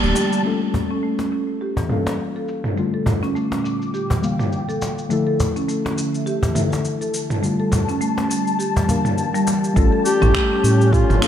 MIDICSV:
0, 0, Header, 1, 8, 480
1, 0, Start_track
1, 0, Tempo, 582524
1, 367, Time_signature, 4, 2, 24, 8
1, 9291, End_track
2, 0, Start_track
2, 0, Title_t, "Duduk"
2, 0, Program_c, 0, 69
2, 8281, Note_on_c, 0, 67, 120
2, 9004, Note_on_c, 0, 65, 110
2, 9016, Note_off_c, 0, 67, 0
2, 9291, Note_off_c, 0, 65, 0
2, 9291, End_track
3, 0, Start_track
3, 0, Title_t, "Analog synth pad"
3, 0, Program_c, 1, 89
3, 0, Note_on_c, 1, 55, 87
3, 0, Note_on_c, 1, 81, 79
3, 1224, Note_on_c, 1, 61, 73
3, 2282, Note_off_c, 1, 61, 0
3, 2287, Note_off_c, 1, 55, 0
3, 2290, Note_on_c, 1, 46, 82
3, 2493, Note_on_c, 1, 86, 82
3, 3062, Note_off_c, 1, 81, 0
3, 3172, Note_on_c, 1, 79, 79
3, 4208, Note_off_c, 1, 46, 0
3, 4213, Note_on_c, 1, 50, 69
3, 4725, Note_on_c, 1, 76, 64
3, 4929, Note_off_c, 1, 86, 0
3, 4985, Note_off_c, 1, 79, 0
3, 5087, Note_on_c, 1, 81, 85
3, 6120, Note_on_c, 1, 55, 72
3, 6125, Note_off_c, 1, 76, 0
3, 6129, Note_off_c, 1, 50, 0
3, 8616, Note_on_c, 1, 61, 76
3, 9291, Note_off_c, 1, 55, 0
3, 9291, Note_off_c, 1, 61, 0
3, 9291, Note_off_c, 1, 81, 0
3, 9291, End_track
4, 0, Start_track
4, 0, Title_t, "Marimba"
4, 0, Program_c, 2, 12
4, 28, Note_on_c, 2, 57, 81
4, 118, Note_off_c, 2, 57, 0
4, 369, Note_on_c, 2, 57, 73
4, 498, Note_off_c, 2, 57, 0
4, 507, Note_on_c, 2, 69, 65
4, 603, Note_off_c, 2, 69, 0
4, 746, Note_on_c, 2, 61, 80
4, 838, Note_off_c, 2, 61, 0
4, 847, Note_on_c, 2, 57, 74
4, 970, Note_off_c, 2, 57, 0
4, 987, Note_on_c, 2, 61, 63
4, 1077, Note_off_c, 2, 61, 0
4, 1087, Note_on_c, 2, 61, 66
4, 1165, Note_off_c, 2, 61, 0
4, 1327, Note_on_c, 2, 67, 65
4, 1457, Note_off_c, 2, 67, 0
4, 1466, Note_on_c, 2, 52, 60
4, 1931, Note_off_c, 2, 52, 0
4, 1945, Note_on_c, 2, 69, 66
4, 2003, Note_off_c, 2, 69, 0
4, 2287, Note_on_c, 2, 57, 73
4, 2417, Note_off_c, 2, 57, 0
4, 2422, Note_on_c, 2, 69, 62
4, 2520, Note_off_c, 2, 69, 0
4, 2659, Note_on_c, 2, 61, 82
4, 2754, Note_off_c, 2, 61, 0
4, 2762, Note_on_c, 2, 57, 71
4, 2888, Note_off_c, 2, 57, 0
4, 2901, Note_on_c, 2, 61, 69
4, 2995, Note_off_c, 2, 61, 0
4, 3004, Note_on_c, 2, 61, 68
4, 3084, Note_off_c, 2, 61, 0
4, 3246, Note_on_c, 2, 67, 67
4, 3377, Note_off_c, 2, 67, 0
4, 3381, Note_on_c, 2, 52, 62
4, 3848, Note_off_c, 2, 52, 0
4, 3862, Note_on_c, 2, 69, 68
4, 3921, Note_off_c, 2, 69, 0
4, 4205, Note_on_c, 2, 57, 75
4, 4336, Note_off_c, 2, 57, 0
4, 4340, Note_on_c, 2, 69, 70
4, 4440, Note_off_c, 2, 69, 0
4, 4584, Note_on_c, 2, 61, 87
4, 4676, Note_off_c, 2, 61, 0
4, 4684, Note_on_c, 2, 57, 73
4, 4809, Note_off_c, 2, 57, 0
4, 4820, Note_on_c, 2, 61, 64
4, 4915, Note_off_c, 2, 61, 0
4, 4925, Note_on_c, 2, 61, 70
4, 5004, Note_off_c, 2, 61, 0
4, 5160, Note_on_c, 2, 67, 69
4, 5294, Note_off_c, 2, 67, 0
4, 5301, Note_on_c, 2, 52, 63
4, 5769, Note_off_c, 2, 52, 0
4, 5778, Note_on_c, 2, 69, 67
4, 5839, Note_off_c, 2, 69, 0
4, 6120, Note_on_c, 2, 57, 72
4, 6254, Note_off_c, 2, 57, 0
4, 6260, Note_on_c, 2, 69, 67
4, 6359, Note_off_c, 2, 69, 0
4, 6499, Note_on_c, 2, 61, 84
4, 6594, Note_off_c, 2, 61, 0
4, 6600, Note_on_c, 2, 57, 80
4, 6727, Note_off_c, 2, 57, 0
4, 6739, Note_on_c, 2, 61, 68
4, 6829, Note_off_c, 2, 61, 0
4, 6839, Note_on_c, 2, 61, 68
4, 6921, Note_off_c, 2, 61, 0
4, 7078, Note_on_c, 2, 67, 69
4, 7213, Note_off_c, 2, 67, 0
4, 7221, Note_on_c, 2, 52, 65
4, 7315, Note_off_c, 2, 52, 0
4, 7324, Note_on_c, 2, 62, 69
4, 7449, Note_off_c, 2, 62, 0
4, 7700, Note_on_c, 2, 55, 99
4, 7799, Note_off_c, 2, 55, 0
4, 7803, Note_on_c, 2, 52, 65
4, 7883, Note_off_c, 2, 52, 0
4, 8044, Note_on_c, 2, 57, 83
4, 8176, Note_off_c, 2, 57, 0
4, 8178, Note_on_c, 2, 69, 76
4, 8278, Note_off_c, 2, 69, 0
4, 8421, Note_on_c, 2, 61, 95
4, 8515, Note_off_c, 2, 61, 0
4, 8521, Note_on_c, 2, 57, 88
4, 8647, Note_off_c, 2, 57, 0
4, 8664, Note_on_c, 2, 61, 78
4, 8754, Note_off_c, 2, 61, 0
4, 8764, Note_on_c, 2, 61, 80
4, 8844, Note_off_c, 2, 61, 0
4, 9003, Note_on_c, 2, 67, 77
4, 9135, Note_off_c, 2, 67, 0
4, 9143, Note_on_c, 2, 53, 74
4, 9291, Note_off_c, 2, 53, 0
4, 9291, End_track
5, 0, Start_track
5, 0, Title_t, "Synth keys"
5, 0, Program_c, 3, 88
5, 0, Control_c, 3, 64, 127
5, 0, Note_on_c, 3, 50, 99
5, 0, Note_on_c, 3, 53, 104
5, 0, Note_on_c, 3, 55, 89
5, 0, Note_on_c, 3, 67, 115
5, 21, Note_off_c, 3, 55, 0
5, 21, Note_on_c, 3, 55, 75
5, 29, Note_on_c, 3, 62, 83
5, 33, Note_off_c, 3, 67, 0
5, 33, Note_on_c, 3, 67, 92
5, 340, Note_off_c, 3, 55, 0
5, 344, Note_off_c, 3, 62, 0
5, 346, Note_off_c, 3, 67, 0
5, 354, Note_on_c, 3, 55, 85
5, 370, Note_on_c, 3, 61, 76
5, 378, Control_c, 3, 64, 0
5, 379, Note_on_c, 3, 65, 77
5, 382, Note_off_c, 3, 53, 0
5, 385, Note_off_c, 3, 50, 0
5, 387, Note_on_c, 3, 69, 90
5, 522, Control_c, 3, 64, 127
5, 1535, Note_off_c, 3, 55, 0
5, 1544, Note_off_c, 3, 61, 0
5, 1548, Note_off_c, 3, 65, 0
5, 1552, Note_off_c, 3, 69, 0
5, 1554, Note_on_c, 3, 55, 65
5, 1563, Note_on_c, 3, 58, 61
5, 1571, Note_on_c, 3, 61, 65
5, 1580, Note_on_c, 3, 77, 60
5, 1589, Note_on_c, 3, 69, 73
5, 2256, Note_off_c, 3, 55, 0
5, 2260, Note_off_c, 3, 58, 0
5, 2264, Note_off_c, 3, 61, 0
5, 2268, Note_off_c, 3, 77, 0
5, 2272, Note_on_c, 3, 55, 81
5, 2273, Note_off_c, 3, 69, 0
5, 2290, Note_on_c, 3, 50, 77
5, 2297, Control_c, 3, 64, 0
5, 2298, Note_on_c, 3, 65, 76
5, 2467, Control_c, 3, 64, 127
5, 3455, Note_off_c, 3, 55, 0
5, 3464, Note_off_c, 3, 50, 0
5, 3468, Note_off_c, 3, 65, 0
5, 3478, Note_on_c, 3, 55, 71
5, 3486, Note_on_c, 3, 58, 66
5, 3494, Note_on_c, 3, 50, 63
5, 3501, Note_on_c, 3, 77, 66
5, 4177, Note_off_c, 3, 55, 0
5, 4182, Note_off_c, 3, 58, 0
5, 4186, Note_off_c, 3, 50, 0
5, 4189, Note_off_c, 3, 77, 0
5, 4193, Note_on_c, 3, 53, 83
5, 4199, Note_on_c, 3, 57, 80
5, 4208, Note_on_c, 3, 50, 85
5, 4216, Control_c, 3, 64, 0
5, 4216, Note_on_c, 3, 64, 81
5, 4225, Note_on_c, 3, 69, 93
5, 4378, Control_c, 3, 64, 127
5, 5375, Note_off_c, 3, 53, 0
5, 5378, Note_off_c, 3, 57, 0
5, 5383, Note_off_c, 3, 50, 0
5, 5387, Note_off_c, 3, 64, 0
5, 5391, Note_off_c, 3, 69, 0
5, 5400, Note_on_c, 3, 57, 61
5, 5408, Note_on_c, 3, 50, 65
5, 5416, Note_on_c, 3, 64, 65
5, 5425, Note_on_c, 3, 69, 76
5, 6098, Note_off_c, 3, 57, 0
5, 6103, Note_off_c, 3, 50, 0
5, 6107, Note_off_c, 3, 64, 0
5, 6111, Note_off_c, 3, 69, 0
5, 6112, Note_on_c, 3, 55, 85
5, 6129, Note_on_c, 3, 50, 81
5, 6137, Control_c, 3, 64, 0
5, 6138, Note_on_c, 3, 65, 81
5, 6293, Control_c, 3, 64, 127
5, 7294, Note_off_c, 3, 55, 0
5, 7303, Note_off_c, 3, 50, 0
5, 7308, Note_off_c, 3, 65, 0
5, 7308, Note_on_c, 3, 55, 72
5, 7316, Note_on_c, 3, 58, 65
5, 7323, Note_on_c, 3, 50, 65
5, 7333, Note_on_c, 3, 77, 67
5, 7339, Note_on_c, 3, 70, 74
5, 8013, Note_off_c, 3, 55, 0
5, 8016, Note_off_c, 3, 58, 0
5, 8020, Note_off_c, 3, 50, 0
5, 8025, Note_off_c, 3, 77, 0
5, 8025, Note_on_c, 3, 55, 100
5, 8028, Note_off_c, 3, 70, 0
5, 8041, Note_on_c, 3, 61, 90
5, 8049, Note_on_c, 3, 65, 92
5, 8057, Note_on_c, 3, 69, 105
5, 8058, Control_c, 3, 64, 0
5, 8182, Control_c, 3, 64, 127
5, 9211, Note_off_c, 3, 55, 0
5, 9219, Note_off_c, 3, 61, 0
5, 9223, Note_off_c, 3, 65, 0
5, 9227, Note_off_c, 3, 69, 0
5, 9230, Note_on_c, 3, 55, 78
5, 9238, Note_on_c, 3, 58, 70
5, 9247, Note_on_c, 3, 61, 68
5, 9254, Note_on_c, 3, 77, 72
5, 9263, Note_on_c, 3, 69, 88
5, 9291, Note_off_c, 3, 55, 0
5, 9291, Note_off_c, 3, 58, 0
5, 9291, Note_off_c, 3, 61, 0
5, 9291, Note_off_c, 3, 69, 0
5, 9291, Note_off_c, 3, 77, 0
5, 9291, End_track
6, 0, Start_track
6, 0, Title_t, "Analog synth bass"
6, 0, Program_c, 4, 38
6, 25, Note_on_c, 4, 26, 87
6, 108, Note_off_c, 4, 26, 0
6, 8044, Note_on_c, 4, 33, 99
6, 8157, Note_off_c, 4, 33, 0
6, 8426, Note_on_c, 4, 33, 101
6, 8508, Note_off_c, 4, 33, 0
6, 8766, Note_on_c, 4, 45, 83
6, 9102, Note_off_c, 4, 45, 0
6, 9143, Note_on_c, 4, 31, 89
6, 9226, Note_off_c, 4, 31, 0
6, 9291, End_track
7, 0, Start_track
7, 0, Title_t, "Cajon"
7, 125, Note_on_c, 9, 38, 68
7, 207, Note_off_c, 9, 38, 0
7, 610, Note_on_c, 9, 36, 75
7, 692, Note_off_c, 9, 36, 0
7, 978, Note_on_c, 9, 38, 65
7, 1061, Note_off_c, 9, 38, 0
7, 1456, Note_on_c, 9, 36, 72
7, 1539, Note_off_c, 9, 36, 0
7, 1702, Note_on_c, 9, 38, 76
7, 1784, Note_off_c, 9, 38, 0
7, 2524, Note_on_c, 9, 36, 77
7, 2606, Note_off_c, 9, 36, 0
7, 2661, Note_on_c, 9, 38, 34
7, 2743, Note_off_c, 9, 38, 0
7, 2899, Note_on_c, 9, 38, 69
7, 2982, Note_off_c, 9, 38, 0
7, 3379, Note_on_c, 9, 38, 49
7, 3383, Note_on_c, 9, 36, 86
7, 3461, Note_off_c, 9, 38, 0
7, 3466, Note_off_c, 9, 36, 0
7, 3973, Note_on_c, 9, 38, 64
7, 4056, Note_off_c, 9, 38, 0
7, 4450, Note_on_c, 9, 36, 85
7, 4532, Note_off_c, 9, 36, 0
7, 4827, Note_on_c, 9, 38, 74
7, 4910, Note_off_c, 9, 38, 0
7, 5295, Note_on_c, 9, 36, 88
7, 5377, Note_off_c, 9, 36, 0
7, 5546, Note_on_c, 9, 38, 71
7, 5629, Note_off_c, 9, 38, 0
7, 6366, Note_on_c, 9, 36, 86
7, 6448, Note_off_c, 9, 36, 0
7, 6507, Note_on_c, 9, 38, 30
7, 6589, Note_off_c, 9, 38, 0
7, 6738, Note_on_c, 9, 38, 73
7, 6820, Note_off_c, 9, 38, 0
7, 7222, Note_on_c, 9, 38, 49
7, 7223, Note_on_c, 9, 36, 88
7, 7305, Note_off_c, 9, 38, 0
7, 7306, Note_off_c, 9, 36, 0
7, 7323, Note_on_c, 9, 36, 80
7, 7406, Note_off_c, 9, 36, 0
7, 7807, Note_on_c, 9, 38, 64
7, 7889, Note_off_c, 9, 38, 0
7, 9291, End_track
8, 0, Start_track
8, 0, Title_t, "Drums"
8, 30, Note_on_c, 9, 82, 30
8, 112, Note_off_c, 9, 82, 0
8, 131, Note_on_c, 9, 82, 83
8, 213, Note_off_c, 9, 82, 0
8, 269, Note_on_c, 9, 82, 32
8, 352, Note_off_c, 9, 82, 0
8, 372, Note_on_c, 9, 82, 38
8, 454, Note_off_c, 9, 82, 0
8, 610, Note_on_c, 9, 82, 68
8, 692, Note_off_c, 9, 82, 0
8, 849, Note_on_c, 9, 82, 41
8, 932, Note_off_c, 9, 82, 0
8, 1088, Note_on_c, 9, 82, 68
8, 1171, Note_off_c, 9, 82, 0
8, 1224, Note_on_c, 9, 82, 27
8, 1307, Note_off_c, 9, 82, 0
8, 1328, Note_on_c, 9, 82, 38
8, 1411, Note_off_c, 9, 82, 0
8, 1466, Note_on_c, 9, 82, 27
8, 1548, Note_off_c, 9, 82, 0
8, 1562, Note_on_c, 9, 45, 71
8, 1567, Note_on_c, 9, 82, 70
8, 1644, Note_off_c, 9, 45, 0
8, 1649, Note_off_c, 9, 82, 0
8, 1810, Note_on_c, 9, 82, 36
8, 1893, Note_off_c, 9, 82, 0
8, 1944, Note_on_c, 9, 82, 26
8, 2027, Note_off_c, 9, 82, 0
8, 2045, Note_on_c, 9, 82, 67
8, 2128, Note_off_c, 9, 82, 0
8, 2177, Note_on_c, 9, 45, 71
8, 2182, Note_on_c, 9, 82, 30
8, 2259, Note_off_c, 9, 45, 0
8, 2264, Note_off_c, 9, 82, 0
8, 2285, Note_on_c, 9, 82, 39
8, 2368, Note_off_c, 9, 82, 0
8, 2522, Note_on_c, 9, 45, 69
8, 2527, Note_on_c, 9, 82, 65
8, 2604, Note_off_c, 9, 45, 0
8, 2609, Note_off_c, 9, 82, 0
8, 2664, Note_on_c, 9, 82, 31
8, 2746, Note_off_c, 9, 82, 0
8, 2769, Note_on_c, 9, 82, 44
8, 2851, Note_off_c, 9, 82, 0
8, 3010, Note_on_c, 9, 82, 70
8, 3092, Note_off_c, 9, 82, 0
8, 3147, Note_on_c, 9, 82, 30
8, 3229, Note_off_c, 9, 82, 0
8, 3249, Note_on_c, 9, 82, 41
8, 3331, Note_off_c, 9, 82, 0
8, 3389, Note_on_c, 9, 82, 30
8, 3471, Note_off_c, 9, 82, 0
8, 3489, Note_on_c, 9, 82, 73
8, 3572, Note_off_c, 9, 82, 0
8, 3621, Note_on_c, 9, 45, 69
8, 3626, Note_on_c, 9, 82, 30
8, 3703, Note_off_c, 9, 45, 0
8, 3709, Note_off_c, 9, 82, 0
8, 3729, Note_on_c, 9, 82, 38
8, 3811, Note_off_c, 9, 82, 0
8, 3868, Note_on_c, 9, 82, 30
8, 3951, Note_off_c, 9, 82, 0
8, 3969, Note_on_c, 9, 82, 70
8, 4051, Note_off_c, 9, 82, 0
8, 4107, Note_on_c, 9, 82, 31
8, 4189, Note_off_c, 9, 82, 0
8, 4208, Note_on_c, 9, 82, 42
8, 4290, Note_off_c, 9, 82, 0
8, 4447, Note_on_c, 9, 82, 68
8, 4530, Note_off_c, 9, 82, 0
8, 4585, Note_on_c, 9, 82, 33
8, 4668, Note_off_c, 9, 82, 0
8, 4687, Note_on_c, 9, 82, 46
8, 4770, Note_off_c, 9, 82, 0
8, 4927, Note_on_c, 9, 82, 75
8, 5009, Note_off_c, 9, 82, 0
8, 5063, Note_on_c, 9, 82, 30
8, 5145, Note_off_c, 9, 82, 0
8, 5166, Note_on_c, 9, 82, 41
8, 5248, Note_off_c, 9, 82, 0
8, 5299, Note_on_c, 9, 82, 29
8, 5382, Note_off_c, 9, 82, 0
8, 5399, Note_on_c, 9, 45, 68
8, 5404, Note_on_c, 9, 82, 74
8, 5482, Note_off_c, 9, 45, 0
8, 5487, Note_off_c, 9, 82, 0
8, 5541, Note_on_c, 9, 82, 31
8, 5623, Note_off_c, 9, 82, 0
8, 5643, Note_on_c, 9, 82, 39
8, 5725, Note_off_c, 9, 82, 0
8, 5781, Note_on_c, 9, 82, 29
8, 5863, Note_off_c, 9, 82, 0
8, 5883, Note_on_c, 9, 82, 76
8, 5965, Note_off_c, 9, 82, 0
8, 6018, Note_on_c, 9, 45, 71
8, 6023, Note_on_c, 9, 82, 33
8, 6101, Note_off_c, 9, 45, 0
8, 6106, Note_off_c, 9, 82, 0
8, 6127, Note_on_c, 9, 82, 42
8, 6209, Note_off_c, 9, 82, 0
8, 6359, Note_on_c, 9, 45, 64
8, 6364, Note_on_c, 9, 82, 70
8, 6442, Note_off_c, 9, 45, 0
8, 6447, Note_off_c, 9, 82, 0
8, 6501, Note_on_c, 9, 82, 34
8, 6584, Note_off_c, 9, 82, 0
8, 6604, Note_on_c, 9, 82, 42
8, 6686, Note_off_c, 9, 82, 0
8, 6846, Note_on_c, 9, 82, 73
8, 6928, Note_off_c, 9, 82, 0
8, 6983, Note_on_c, 9, 82, 30
8, 7065, Note_off_c, 9, 82, 0
8, 7085, Note_on_c, 9, 82, 40
8, 7167, Note_off_c, 9, 82, 0
8, 7223, Note_on_c, 9, 82, 28
8, 7305, Note_off_c, 9, 82, 0
8, 7325, Note_on_c, 9, 82, 69
8, 7408, Note_off_c, 9, 82, 0
8, 7457, Note_on_c, 9, 45, 70
8, 7462, Note_on_c, 9, 82, 32
8, 7539, Note_off_c, 9, 45, 0
8, 7544, Note_off_c, 9, 82, 0
8, 7563, Note_on_c, 9, 82, 41
8, 7646, Note_off_c, 9, 82, 0
8, 7704, Note_on_c, 9, 82, 30
8, 7787, Note_off_c, 9, 82, 0
8, 7805, Note_on_c, 9, 82, 78
8, 7887, Note_off_c, 9, 82, 0
8, 7945, Note_on_c, 9, 82, 30
8, 8027, Note_off_c, 9, 82, 0
8, 8044, Note_on_c, 9, 36, 105
8, 8048, Note_on_c, 9, 82, 48
8, 8127, Note_off_c, 9, 36, 0
8, 8130, Note_off_c, 9, 82, 0
8, 8286, Note_on_c, 9, 82, 80
8, 8368, Note_off_c, 9, 82, 0
8, 8419, Note_on_c, 9, 45, 90
8, 8424, Note_on_c, 9, 82, 35
8, 8502, Note_off_c, 9, 45, 0
8, 8507, Note_off_c, 9, 82, 0
8, 8524, Note_on_c, 9, 36, 98
8, 8525, Note_on_c, 9, 26, 87
8, 8530, Note_on_c, 9, 82, 44
8, 8607, Note_off_c, 9, 26, 0
8, 8607, Note_off_c, 9, 36, 0
8, 8612, Note_off_c, 9, 82, 0
8, 8771, Note_on_c, 9, 82, 82
8, 8853, Note_off_c, 9, 82, 0
8, 8910, Note_on_c, 9, 82, 30
8, 8993, Note_off_c, 9, 82, 0
8, 9005, Note_on_c, 9, 36, 90
8, 9014, Note_on_c, 9, 82, 45
8, 9087, Note_off_c, 9, 36, 0
8, 9096, Note_off_c, 9, 82, 0
8, 9146, Note_on_c, 9, 45, 85
8, 9151, Note_on_c, 9, 82, 31
8, 9229, Note_off_c, 9, 45, 0
8, 9234, Note_off_c, 9, 82, 0
8, 9247, Note_on_c, 9, 26, 83
8, 9252, Note_on_c, 9, 82, 81
8, 9291, Note_off_c, 9, 26, 0
8, 9291, Note_off_c, 9, 82, 0
8, 9291, End_track
0, 0, End_of_file